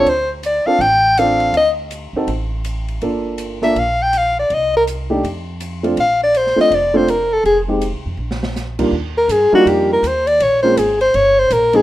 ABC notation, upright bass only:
X:1
M:4/4
L:1/8
Q:"Swing" 1/4=162
K:Bb
V:1 name="Upright bass" clef=bass
D,,3 z A,,,4 | D,,3 E,, A,,,4 | G,,,4 B,,,4 | C,,4 F,,4 |
B,,,3 z F,,,4 | F,,,2- (3F,,, C,, F,, B,,,4 | [K:Eb] E,,2 G,, z F,,2 E,,2 | B,,,2 A,,,2 G,,,2 B,,,2 |]